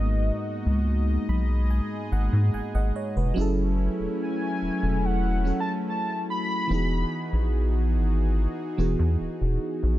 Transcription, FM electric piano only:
\new Staff \with { instrumentName = "FM electric piano" } { \time 4/4 \key gis \minor \tempo 4 = 72 << { r4. b''8 gis''8 fis''8 <fis'' gis''>16 <dis'' fis''>16 <cis'' dis''>16 b'16~ | b'16 r2. r8. | r1 | } \\ { <gis, gis ais b fis'>2.~ <gis, gis ais b fis'>8 r8 | <fis cis' e' gis' a'>2~ <fis cis' e' gis' a'>8 <fis cis' e' fis' a'>4. | <e b dis' fis' gis'>2~ <e b dis' fis' gis'>8 <e b dis' fis' gis'>4. | } >> }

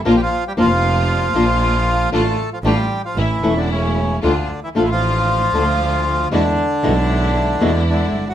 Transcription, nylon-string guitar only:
\new Staff \with { instrumentName = "Nylon-string guitar" } { \time 4/4 \key d \minor \tempo 4 = 116 <f bes d' f'>8 r8 <f bes d' f'>8 r4 <f bes d' f'>8 r4 | <d a d' f'>8 r8 <d a d' f'>8 r4 <e a cis' e'>8 r4 | <d a d' f'>8 r8 <d a d' f'>8 r4 <d a d' f'>8 r4 | <b, d gis b e'>8 r8 <b, d gis b e'>8 r4 <b, d gis b e'>8 r4 | }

